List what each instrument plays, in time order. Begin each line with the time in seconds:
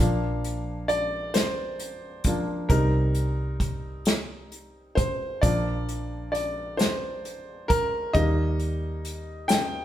Already playing: upright piano F5
0.00 fingered electric bass A#1, upright piano F3 A#3 D4
0.44 closed hi-hat
0.88 upright piano D5, closed hi-hat
1.34 upright piano C5, snare, closed hi-hat
1.80 closed hi-hat
2.24 upright piano F3 A#3 D4, kick, closed hi-hat
2.69 fingered electric bass C2, upright piano G3 C4 D#4 A#4, kick, closed hi-hat
3.15 closed hi-hat
3.60 kick, closed hi-hat
4.05 snare, closed hi-hat
4.52 closed hi-hat
4.95 upright piano C5, kick, closed hi-hat
5.42 fingered electric bass A#1, upright piano F3 A#3 D4 D5, kick, closed hi-hat
5.89 closed hi-hat
6.32 upright piano D5, closed hi-hat
6.77 upright piano C5, snare, closed hi-hat
7.25 closed hi-hat
7.68 upright piano A#4, kick, closed hi-hat
8.13 fingered electric bass D#2, upright piano G3 A#3 D#4 D#5, kick, closed hi-hat
8.60 closed hi-hat
9.05 closed hi-hat
9.48 upright piano G5, snare, closed hi-hat